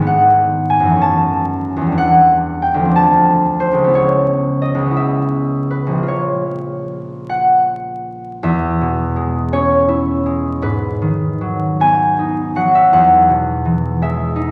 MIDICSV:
0, 0, Header, 1, 2, 480
1, 0, Start_track
1, 0, Tempo, 643777
1, 54, Time_signature, 6, 3, 24, 8
1, 2456, Tempo, 681818
1, 3896, Tempo, 736196
1, 4376, Tempo, 802139
1, 5336, Tempo, 760456
1, 5816, Tempo, 732601
1, 7256, Tempo, 779221
1, 8216, Tempo, 722022
1, 9755, End_track
2, 0, Start_track
2, 0, Title_t, "Harp"
2, 0, Program_c, 0, 46
2, 0, Note_on_c, 0, 44, 61
2, 0, Note_on_c, 0, 51, 53
2, 0, Note_on_c, 0, 56, 50
2, 12, Note_on_c, 0, 59, 51
2, 50, Note_on_c, 0, 78, 89
2, 521, Note_on_c, 0, 80, 89
2, 596, Note_on_c, 0, 42, 57
2, 636, Note_on_c, 0, 52, 52
2, 672, Note_on_c, 0, 57, 50
2, 699, Note_off_c, 0, 44, 0
2, 718, Note_on_c, 0, 61, 48
2, 719, Note_off_c, 0, 51, 0
2, 738, Note_off_c, 0, 56, 0
2, 757, Note_on_c, 0, 81, 99
2, 759, Note_off_c, 0, 59, 0
2, 778, Note_off_c, 0, 80, 0
2, 1315, Note_on_c, 0, 40, 53
2, 1343, Note_off_c, 0, 52, 0
2, 1352, Note_on_c, 0, 52, 49
2, 1393, Note_on_c, 0, 55, 47
2, 1417, Note_off_c, 0, 42, 0
2, 1431, Note_on_c, 0, 62, 53
2, 1455, Note_off_c, 0, 57, 0
2, 1465, Note_off_c, 0, 78, 0
2, 1474, Note_on_c, 0, 78, 99
2, 1478, Note_off_c, 0, 61, 0
2, 1497, Note_off_c, 0, 81, 0
2, 1955, Note_on_c, 0, 79, 68
2, 2044, Note_on_c, 0, 38, 55
2, 2083, Note_on_c, 0, 53, 47
2, 2126, Note_on_c, 0, 60, 50
2, 2149, Note_off_c, 0, 40, 0
2, 2156, Note_off_c, 0, 62, 0
2, 2165, Note_on_c, 0, 62, 44
2, 2167, Note_off_c, 0, 52, 0
2, 2188, Note_off_c, 0, 55, 0
2, 2205, Note_on_c, 0, 81, 95
2, 2225, Note_off_c, 0, 79, 0
2, 2306, Note_off_c, 0, 78, 0
2, 2671, Note_on_c, 0, 72, 78
2, 2760, Note_on_c, 0, 37, 48
2, 2803, Note_on_c, 0, 56, 44
2, 2840, Note_on_c, 0, 59, 44
2, 2863, Note_off_c, 0, 38, 0
2, 2874, Note_on_c, 0, 64, 45
2, 2881, Note_off_c, 0, 53, 0
2, 2901, Note_off_c, 0, 60, 0
2, 2917, Note_on_c, 0, 73, 78
2, 2920, Note_off_c, 0, 62, 0
2, 2933, Note_off_c, 0, 72, 0
2, 2939, Note_off_c, 0, 81, 0
2, 3388, Note_on_c, 0, 75, 68
2, 3470, Note_off_c, 0, 37, 0
2, 3478, Note_on_c, 0, 37, 50
2, 3511, Note_off_c, 0, 56, 0
2, 3519, Note_on_c, 0, 56, 40
2, 3552, Note_off_c, 0, 59, 0
2, 3560, Note_on_c, 0, 59, 42
2, 3586, Note_off_c, 0, 64, 0
2, 3594, Note_on_c, 0, 64, 42
2, 3632, Note_on_c, 0, 76, 67
2, 4134, Note_on_c, 0, 71, 61
2, 4239, Note_on_c, 0, 34, 43
2, 4272, Note_on_c, 0, 55, 34
2, 4311, Note_on_c, 0, 58, 33
2, 4317, Note_off_c, 0, 37, 0
2, 4336, Note_off_c, 0, 56, 0
2, 4346, Note_on_c, 0, 65, 39
2, 4355, Note_off_c, 0, 59, 0
2, 4371, Note_off_c, 0, 64, 0
2, 4371, Note_off_c, 0, 73, 0
2, 4379, Note_on_c, 0, 73, 59
2, 4387, Note_off_c, 0, 75, 0
2, 4387, Note_off_c, 0, 76, 0
2, 4396, Note_off_c, 0, 71, 0
2, 5105, Note_on_c, 0, 78, 72
2, 5769, Note_off_c, 0, 34, 0
2, 5785, Note_off_c, 0, 55, 0
2, 5803, Note_off_c, 0, 58, 0
2, 5809, Note_on_c, 0, 40, 69
2, 5814, Note_on_c, 0, 76, 73
2, 5821, Note_off_c, 0, 65, 0
2, 6059, Note_on_c, 0, 47, 50
2, 6288, Note_on_c, 0, 56, 54
2, 6323, Note_off_c, 0, 78, 0
2, 6520, Note_off_c, 0, 73, 0
2, 6527, Note_on_c, 0, 61, 51
2, 6530, Note_on_c, 0, 73, 83
2, 6763, Note_on_c, 0, 64, 56
2, 6999, Note_off_c, 0, 56, 0
2, 7007, Note_on_c, 0, 56, 46
2, 7244, Note_on_c, 0, 44, 62
2, 7247, Note_on_c, 0, 71, 78
2, 7270, Note_off_c, 0, 64, 0
2, 7270, Note_off_c, 0, 73, 0
2, 7271, Note_off_c, 0, 40, 0
2, 7271, Note_off_c, 0, 61, 0
2, 7273, Note_off_c, 0, 47, 0
2, 7273, Note_off_c, 0, 76, 0
2, 7488, Note_on_c, 0, 51, 47
2, 7732, Note_on_c, 0, 54, 47
2, 7973, Note_on_c, 0, 59, 51
2, 7978, Note_on_c, 0, 80, 96
2, 8210, Note_on_c, 0, 63, 49
2, 8450, Note_off_c, 0, 54, 0
2, 8455, Note_on_c, 0, 54, 50
2, 8458, Note_on_c, 0, 78, 84
2, 8583, Note_on_c, 0, 76, 78
2, 8664, Note_off_c, 0, 78, 0
2, 8701, Note_on_c, 0, 40, 69
2, 8706, Note_on_c, 0, 78, 81
2, 8716, Note_off_c, 0, 44, 0
2, 8719, Note_off_c, 0, 51, 0
2, 8721, Note_off_c, 0, 54, 0
2, 8788, Note_off_c, 0, 76, 0
2, 8942, Note_on_c, 0, 47, 49
2, 9183, Note_on_c, 0, 52, 51
2, 9419, Note_off_c, 0, 56, 0
2, 9426, Note_on_c, 0, 56, 54
2, 9430, Note_on_c, 0, 76, 84
2, 9644, Note_off_c, 0, 63, 0
2, 9652, Note_on_c, 0, 63, 57
2, 9755, Note_off_c, 0, 40, 0
2, 9755, Note_off_c, 0, 47, 0
2, 9755, Note_off_c, 0, 52, 0
2, 9755, Note_off_c, 0, 56, 0
2, 9755, Note_off_c, 0, 59, 0
2, 9755, Note_off_c, 0, 63, 0
2, 9755, Note_off_c, 0, 71, 0
2, 9755, Note_off_c, 0, 76, 0
2, 9755, Note_off_c, 0, 78, 0
2, 9755, Note_off_c, 0, 80, 0
2, 9755, End_track
0, 0, End_of_file